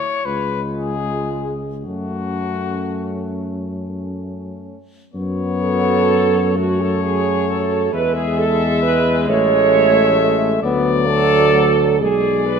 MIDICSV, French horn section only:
0, 0, Header, 1, 2, 480
1, 0, Start_track
1, 0, Key_signature, 3, "minor"
1, 0, Tempo, 1065719
1, 838, Tempo, 1109057
1, 839, Time_signature, 6, 3, 24, 8
1, 1798, Tempo, 1069519
1, 2278, Tempo, 946372
1, 3238, Tempo, 896861
1, 5158, Tempo, 930233
1, 6173, End_track
2, 0, Start_track
2, 0, Title_t, "French horn section"
2, 0, Program_c, 0, 60
2, 0, Note_on_c, 0, 64, 50
2, 95, Note_off_c, 0, 64, 0
2, 103, Note_on_c, 0, 65, 53
2, 758, Note_off_c, 0, 65, 0
2, 834, Note_on_c, 0, 61, 47
2, 2107, Note_off_c, 0, 61, 0
2, 2515, Note_on_c, 0, 69, 109
2, 2980, Note_off_c, 0, 69, 0
2, 2998, Note_on_c, 0, 66, 96
2, 3117, Note_off_c, 0, 66, 0
2, 3118, Note_on_c, 0, 69, 91
2, 3231, Note_on_c, 0, 68, 97
2, 3237, Note_off_c, 0, 69, 0
2, 3473, Note_on_c, 0, 69, 99
2, 3477, Note_off_c, 0, 68, 0
2, 3710, Note_on_c, 0, 71, 110
2, 3715, Note_off_c, 0, 69, 0
2, 3829, Note_on_c, 0, 68, 103
2, 3830, Note_off_c, 0, 71, 0
2, 3952, Note_on_c, 0, 69, 117
2, 3953, Note_off_c, 0, 68, 0
2, 4190, Note_on_c, 0, 71, 117
2, 4198, Note_off_c, 0, 69, 0
2, 4436, Note_off_c, 0, 71, 0
2, 4436, Note_on_c, 0, 73, 117
2, 5153, Note_off_c, 0, 73, 0
2, 5383, Note_on_c, 0, 69, 120
2, 5845, Note_off_c, 0, 69, 0
2, 5865, Note_on_c, 0, 68, 103
2, 6105, Note_on_c, 0, 71, 106
2, 6113, Note_off_c, 0, 68, 0
2, 6173, Note_off_c, 0, 71, 0
2, 6173, End_track
0, 0, End_of_file